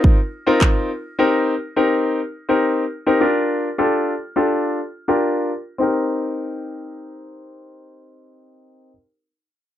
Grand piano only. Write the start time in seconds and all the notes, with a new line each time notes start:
Already playing: C4 D#4 F4 A#4
0.47 C4 D#4 F4 A#4
1.19 C4 D#4 G4 A#4
1.76 C4 D#4 G4 A#4
2.49 C4 D#4 G4 A#4
3.06 C4 D#4 G4 A#4
3.21 D4 F4 G4 A#4
3.78 D4 F4 G4 A4
4.36 D4 F4 G4 A4
5.08 D4 F4 G4 A#4
5.78 C4 D#4 G4
5.82 A#4